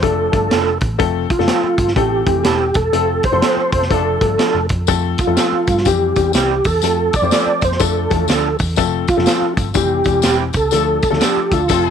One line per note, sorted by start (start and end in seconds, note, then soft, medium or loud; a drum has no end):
0.02 0.28 F1 loud
0.02 0.26 F3 medium
0.02 0.26 A3 medium
0.02 0.27 D4 medium
0.02 0.27 A4 medium
0.02 0.78 A4 medium
0.02 kick loud
0.02 closed hi-hat medium
0.32 0.48 G1 medium
0.32 0.71 F3 medium
0.32 0.72 A3 medium
0.32 0.72 D4 medium
0.32 0.72 A4 medium
0.32 kick loud
0.32 closed hi-hat medium
0.51 0.77 F1 medium
0.51 0.69 A3 medium
0.51 0.69 D4 medium
0.51 0.69 F4 medium
0.51 0.70 A4 medium
0.51 snare loud
0.51 closed hi-hat loud
0.81 0.97 A1 loud
0.81 kick loud
0.81 closed hi-hat medium
0.98 1.25 F1 loud
0.98 1.24 F3 loud
0.98 1.25 A3 medium
0.98 1.25 C4 medium
0.98 1.25 A4 loud
0.98 kick loud
0.98 closed hi-hat medium
1.30 1.93 F4 medium
1.30 kick loud
1.30 closed hi-hat medium
1.38 1.47 F1 loud
1.38 1.87 F3 medium
1.38 1.87 A3 medium
1.38 1.87 C4 medium
1.38 1.87 A4 medium
1.38 snare soft
1.47 1.66 A3 medium
1.47 1.66 C4 medium
1.47 1.66 F4 medium
1.47 1.66 A4 loud
1.47 snare loud
1.47 closed hi-hat loud
1.63 muted picked electric bass stroke soft
1.78 1.94 G1 medium
1.78 kick loud
1.78 closed hi-hat loud
1.88 snare soft
1.96 2.22 A1 medium
1.96 2.21 E3 medium
1.96 2.21 A3 medium
1.96 2.21 C4 medium
1.96 2.44 G4 medium
1.96 2.21 A4 loud
1.96 kick loud
1.96 closed hi-hat medium
2.26 2.42 F1 medium
2.26 2.66 E3 medium
2.26 2.66 A3 medium
2.26 2.66 C4 medium
2.26 2.66 G4 medium
2.26 kick loud
2.26 closed hi-hat medium
2.44 2.71 E1 medium
2.44 2.63 A3 medium
2.44 2.63 C4 medium
2.44 2.63 E4 medium
2.44 2.76 G4 medium
2.44 2.63 A4 medium
2.44 snare loud
2.44 closed hi-hat loud
2.74 2.91 E1 medium
2.74 3.26 A4 loud
2.74 kick loud
2.74 closed hi-hat medium
2.92 3.19 F1 medium
2.92 3.19 F3 medium
2.92 3.19 A3 medium
2.92 3.07 A3 medium
2.92 3.19 C4 medium
2.92 3.06 C4 medium
2.92 3.06 F4 medium
2.92 3.19 A4 medium
2.92 3.07 A4 medium
2.92 closed hi-hat medium
3.23 3.71 C5 loud
3.23 kick medium
3.23 closed hi-hat medium
3.32 3.40 F1 loud
3.32 3.81 F3 medium
3.32 3.81 A3 medium
3.32 3.81 C4 medium
3.32 3.81 A4 medium
3.42 3.60 A3 medium
3.42 3.60 C4 medium
3.42 3.61 F4 loud
3.42 3.61 A4 medium
3.42 snare loud
3.42 closed hi-hat loud
3.57 muted picked electric bass stroke soft
3.72 3.88 F1 medium
3.72 3.81 A3 medium
3.72 3.80 C4 medium
3.72 3.81 F4 medium
3.72 3.81 A4 medium
3.72 3.92 C5 loud
3.72 kick loud
3.72 closed hi-hat medium
3.82 snare soft
3.90 4.17 F1 loud
3.90 4.15 F3 medium
3.90 4.15 A3 medium
3.90 4.28 A3 medium
3.90 4.15 D4 medium
3.90 4.28 D4 loud
3.90 4.28 F4 medium
3.90 4.28 A4 medium
3.90 4.15 A4 loud
3.90 4.66 A4 medium
3.90 kick loud
3.90 closed hi-hat medium
4.21 4.37 G1 medium
4.21 4.61 F3 medium
4.21 4.61 A3 medium
4.21 4.61 D4 medium
4.21 4.61 A4 medium
4.21 kick loud
4.21 closed hi-hat medium
4.38 4.57 A3 medium
4.38 4.57 D4 medium
4.38 4.58 F4 medium
4.38 4.58 A4 medium
4.38 muted picked electric bass stroke soft
4.38 snare loud
4.38 closed hi-hat loud
4.54 4.67 F1 medium
4.69 4.86 F2 loud
4.69 kick medium
4.69 closed hi-hat medium
4.87 5.14 F2 loud
4.87 5.14 F3 medium
4.87 5.14 A3 medium
4.87 5.14 C4 medium
4.87 5.14 A4 loud
4.87 kick loud
4.87 closed hi-hat medium
4.87 tambourine loud
5.18 5.89 F4 medium
5.18 kick loud
5.18 closed hi-hat medium
5.18 tambourine medium
5.27 5.36 F2 loud
5.27 5.76 F3 medium
5.27 5.76 A3 medium
5.27 5.76 C4 medium
5.27 5.76 A4 medium
5.36 5.55 A3 medium
5.36 5.55 C4 medium
5.36 5.55 F4 medium
5.36 5.56 A4 medium
5.36 snare loud
5.36 closed hi-hat loud
5.36 tambourine loud
5.52 muted picked electric bass stroke soft
5.67 5.83 G2 medium
5.67 kick loud
5.67 closed hi-hat medium
5.67 tambourine medium
5.77 snare soft
5.85 6.11 F2 medium
5.85 6.10 E3 medium
5.85 6.10 G3 medium
5.85 6.10 C4 medium
5.85 6.10 G4 loud
5.85 6.32 G4 medium
5.85 kick loud
5.85 closed hi-hat medium
5.85 tambourine loud
6.16 6.32 E2 loud
6.16 6.56 E3 medium
6.16 6.55 G3 medium
6.16 6.56 C4 medium
6.16 6.56 G4 medium
6.16 kick medium
6.16 closed hi-hat medium
6.16 tambourine medium
6.33 6.60 C2 loud
6.33 6.52 G3 medium
6.33 6.53 C4 medium
6.33 6.53 E4 medium
6.33 6.53 G4 medium
6.33 snare loud
6.33 closed hi-hat loud
6.33 tambourine loud
6.38 6.67 G4 medium
6.64 6.81 E2 medium
6.64 7.16 A4 loud
6.64 kick loud
6.64 open hi-hat medium
6.64 tambourine medium
6.82 7.09 F2 medium
6.82 7.09 F3 medium
6.82 7.09 A3 medium
6.82 7.09 C4 medium
6.82 7.09 A4 medium
6.82 closed hi-hat medium
6.82 tambourine loud
7.13 7.65 D5 loud
7.13 kick loud
7.13 closed hi-hat medium
7.13 tambourine medium
7.22 7.30 F2 loud
7.22 7.71 F3 medium
7.22 7.71 A3 medium
7.22 7.71 C4 medium
7.22 7.71 C5 medium
7.31 7.50 A3 medium
7.31 7.50 C4 medium
7.31 7.50 F4 medium
7.31 7.50 A4 medium
7.31 snare loud
7.31 closed hi-hat loud
7.31 tambourine loud
7.46 muted picked electric bass stroke soft
7.61 7.78 F2 medium
7.61 7.82 C5 medium
7.61 kick loud
7.61 closed hi-hat loud
7.61 tambourine medium
7.72 snare soft
7.79 8.06 F2 loud
7.79 8.04 F3 medium
7.79 8.04 A3 medium
7.79 8.04 D4 medium
7.79 8.04 A4 loud
7.79 8.57 A4 medium
7.79 kick loud
7.79 closed hi-hat medium
7.79 tambourine loud
8.10 8.27 E2 loud
8.10 8.15 E3 medium
8.10 8.50 A3 medium
8.10 8.50 D4 medium
8.10 8.50 A4 medium
8.10 kick loud
8.10 closed hi-hat medium
8.10 tambourine soft
8.16 8.53 F3 medium
8.28 8.55 D2 loud
8.28 8.47 A3 medium
8.28 8.47 D4 medium
8.28 8.48 F4 medium
8.28 8.48 A4 medium
8.28 snare loud
8.28 closed hi-hat loud
8.28 tambourine loud
8.59 8.75 E2 medium
8.59 kick medium
8.59 open hi-hat medium
8.59 tambourine medium
8.76 9.04 F1 loud
8.76 9.03 F3 loud
8.76 9.03 A3 medium
8.76 9.03 C4 medium
8.76 9.03 A4 loud
8.76 kick loud
8.76 closed hi-hat medium
8.76 tambourine loud
9.08 9.54 F4 loud
9.08 kick loud
9.08 closed hi-hat medium
9.08 tambourine medium
9.17 9.25 F1 loud
9.17 9.65 F3 medium
9.17 9.65 A3 medium
9.17 9.65 C4 medium
9.17 9.66 A4 medium
9.17 snare soft
9.26 9.44 A3 medium
9.26 9.44 C4 medium
9.26 9.45 F4 medium
9.26 9.45 A4 medium
9.26 snare loud
9.26 closed hi-hat loud
9.26 tambourine loud
9.42 muted picked electric bass stroke soft
9.57 9.72 G1 medium
9.57 kick loud
9.57 closed hi-hat loud
9.57 tambourine medium
9.74 10.01 F1 loud
9.74 9.99 E3 medium
9.74 9.99 G3 medium
9.74 9.99 C4 medium
9.74 9.99 G4 loud
9.74 10.24 G4 loud
9.74 kick loud
9.74 closed hi-hat medium
9.74 tambourine loud
10.04 10.21 E1 loud
10.04 10.45 E3 medium
10.04 10.45 G3 medium
10.04 10.45 C4 medium
10.04 10.45 G4 medium
10.04 kick medium
10.04 closed hi-hat medium
10.04 tambourine medium
10.22 10.50 E1 loud
10.22 10.41 G3 medium
10.22 10.42 C4 loud
10.22 10.42 E4 loud
10.22 10.42 G4 loud
10.22 10.38 G4 medium
10.22 snare loud
10.22 closed hi-hat loud
10.22 tambourine loud
10.53 10.70 C#2 medium
10.53 11.24 A4 loud
10.53 kick medium
10.53 closed hi-hat medium
10.53 tambourine medium
10.71 10.98 D2 loud
10.71 10.98 F3 medium
10.71 10.98 A3 medium
10.71 10.85 A3 medium
10.71 10.98 D4 medium
10.71 10.85 D4 medium
10.71 10.85 F4 medium
10.71 10.98 A4 medium
10.71 10.85 A4 loud
10.71 closed hi-hat medium
10.71 tambourine loud
11.02 kick loud
11.02 closed hi-hat medium
11.02 tambourine medium
11.10 11.20 D2 loud
11.10 11.59 F3 medium
11.10 11.60 A3 medium
11.10 11.60 D4 medium
11.10 11.59 A4 medium
11.10 snare soft
11.20 11.39 A3 medium
11.20 11.39 D4 medium
11.20 11.39 F4 medium
11.20 11.54 G4 loud
11.20 11.40 A4 loud
11.20 snare loud
11.20 closed hi-hat loud
11.20 tambourine loud
11.37 muted picked electric bass stroke soft
11.51 11.67 D2 medium
11.51 11.59 A3 medium
11.51 11.59 D4 medium
11.51 11.59 F4 medium
11.51 11.90 F4 medium
11.51 11.59 A4 loud
11.51 kick loud
11.51 closed hi-hat medium
11.51 tambourine soft
11.68 11.90 F1 loud
11.68 11.90 F3 medium
11.68 11.90 A3 loud
11.68 11.90 A3 medium
11.68 11.90 C4 medium
11.68 11.90 F4 loud
11.68 11.90 A4 loud
11.68 11.90 A4 medium
11.68 kick loud
11.68 closed hi-hat medium
11.68 tambourine loud